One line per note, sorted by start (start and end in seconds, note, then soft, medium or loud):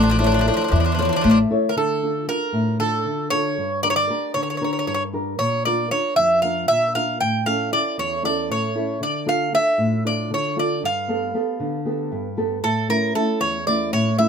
0.00 0.49 A1 medium
0.00 0.08 F3 soft
0.00 0.44 A3 medium
0.00 0.10 D4 medium
0.09 0.16 F3 medium
0.09 0.17 D4 medium
0.19 0.23 F3 soft
0.19 0.25 D4 medium
0.19 0.45 E4 medium
0.19 0.45 A4 soft
0.19 0.45 C#5 medium
0.24 0.31 F3 medium
0.24 0.32 D4 medium
0.32 0.38 F3 soft
0.32 0.40 D4 medium
0.39 0.46 F3 soft
0.39 0.47 D4 medium
0.46 0.53 F3 soft
0.46 0.55 D4 medium
0.46 0.88 E4 soft
0.46 0.88 A4 soft
0.46 0.88 C#5 medium
0.54 0.60 F3 soft
0.54 0.63 D4 medium
0.61 0.67 F3 soft
0.61 0.70 D4 soft
0.68 1.09 E2 loud
0.68 1.22 E3 medium
0.68 0.74 F3 soft
0.68 0.78 D4 soft
0.76 0.83 F3 soft
0.80 0.85 D4 soft
0.85 0.91 F3 soft
0.85 0.92 D4 medium
0.92 0.98 F3 soft
0.92 1.00 D4 soft
0.98 1.04 F3 medium
0.98 1.40 E4 soft
0.98 1.40 A4 soft
0.98 1.40 C#5 soft
1.02 1.11 F3 soft
1.02 1.08 D4 soft
1.09 1.20 F3 medium
1.09 1.15 D4 soft
1.16 1.23 D4 medium
1.21 1.43 A1 medium
1.21 1.28 F3 soft
1.21 1.75 A3 medium
1.21 1.30 D4 medium
1.30 1.37 F3 medium
1.30 1.37 D4 medium
1.51 1.71 E4 medium
1.51 1.71 A4 medium
1.51 1.72 C#5 medium
1.69 1.76 A#4 medium
1.76 2.27 D3 soft
1.76 2.25 A4 medium
2.03 2.26 D4 soft
2.03 2.27 F4 soft
2.03 2.45 A4 soft
2.28 2.69 D4 soft
2.28 2.70 F4 soft
2.28 2.77 A#4 medium
2.53 3.04 A2 medium
2.79 3.21 D4 soft
2.79 3.21 F4 soft
2.79 3.28 A4 medium
2.79 3.22 A4 soft
3.06 3.56 D3 soft
3.30 3.52 D4 soft
3.30 3.53 F4 soft
3.30 3.53 A4 soft
3.30 3.80 C#5 medium
3.58 4.08 G2 soft
3.83 4.08 D4 soft
3.83 4.08 G4 soft
3.83 4.09 A#4 soft
3.83 3.90 D5 medium
3.90 3.96 C#5 medium
3.96 4.34 D5 medium
4.10 4.51 D4 soft
4.10 4.51 G4 soft
4.10 4.52 A#4 soft
4.34 4.86 D3 medium
4.34 4.42 C#5 medium
4.43 4.49 C#5 soft
4.50 4.56 C#5 soft
4.57 5.03 D4 soft
4.57 4.63 C#5 soft
4.61 5.03 G4 soft
4.61 5.03 A#4 soft
4.61 4.72 C#5 soft
4.73 4.78 C#5 soft
4.79 4.86 C#5 medium
4.87 5.38 G2 medium
4.87 4.93 C#5 soft
4.94 5.02 C#5 medium
5.13 5.34 D4 soft
5.13 5.34 G4 soft
5.13 5.35 A#4 medium
5.39 5.90 A#2 medium
5.39 5.65 C#5 medium
5.65 5.90 D4 soft
5.65 5.90 F4 soft
5.65 5.90 A#4 soft
5.65 5.90 D5 medium
5.91 6.33 D4 soft
5.91 6.33 F4 soft
5.91 6.33 A#4 soft
5.91 6.16 C#5 medium
6.16 6.68 F2 medium
6.16 6.42 E5 medium
6.42 6.85 D4 soft
6.42 6.85 F4 soft
6.42 6.86 A#4 soft
6.42 6.68 F5 medium
6.68 7.20 A#2 medium
6.68 6.93 E5 medium
6.95 7.16 D4 soft
6.95 7.16 F4 soft
6.95 7.16 A#4 soft
6.95 7.20 F5 medium
7.20 7.72 A2 medium
7.20 7.45 G5 medium
7.46 7.71 C#4 soft
7.46 7.71 E4 soft
7.46 7.72 A4 soft
7.46 7.71 F5 medium
7.72 8.14 C#4 soft
7.72 8.14 E4 soft
7.72 8.14 A4 soft
7.72 7.99 D5 medium
7.98 8.49 E2 medium
7.98 8.23 C#5 medium
8.23 8.65 C#4 soft
8.23 8.66 E4 soft
8.23 8.66 A4 soft
8.23 8.49 D5 medium
8.49 9.00 A2 medium
8.49 9.02 C#5 medium
8.75 8.97 C#4 soft
8.75 8.97 E4 soft
8.75 8.97 A4 soft
9.01 9.52 D3 medium
9.01 9.27 D5 medium
9.26 9.51 D4 soft
9.26 9.52 F4 soft
9.26 9.53 A4 soft
9.26 9.53 F5 medium
9.53 9.94 D4 soft
9.53 9.95 F4 soft
9.53 9.95 A4 soft
9.53 10.02 E5 medium
9.78 10.29 A2 medium
10.04 10.46 D4 soft
10.04 10.46 F4 soft
10.04 10.46 A4 soft
10.04 10.30 D5 medium
10.31 10.81 D3 medium
10.31 10.57 C#5 medium
10.56 10.77 D4 medium
10.56 10.77 F4 soft
10.56 10.78 A4 medium
10.56 10.85 D5 medium
10.83 11.33 G2 soft
10.83 12.35 F5 medium
11.08 11.33 B3 soft
11.08 11.33 G4 soft
11.08 11.33 A4 soft
11.34 11.76 B3 soft
11.34 11.76 G4 soft
11.34 11.76 A4 soft
11.60 12.10 D3 medium
11.85 12.27 B3 soft
11.85 12.27 G4 soft
11.85 12.27 A4 soft
12.12 12.62 G2 medium
12.37 12.58 B3 soft
12.37 12.58 G4 soft
12.37 12.58 A4 medium
12.63 13.13 A2 medium
12.63 12.90 A4 medium
12.89 13.14 A3 soft
12.89 13.14 C#4 soft
12.89 13.14 E4 soft
12.89 13.13 A#4 medium
13.15 13.56 A3 soft
13.15 13.56 C#4 soft
13.15 13.56 E4 soft
13.15 13.39 A4 medium
13.41 13.91 E2 medium
13.41 13.65 C#5 medium
13.67 14.07 A3 soft
13.67 14.08 C#4 soft
13.67 14.08 E4 soft
13.67 13.93 D5 medium
13.93 14.29 A2 medium
13.93 14.16 C#5 medium
14.19 14.29 A3 soft
14.19 14.29 C#4 soft
14.19 14.29 E4 medium
14.19 14.29 E5 medium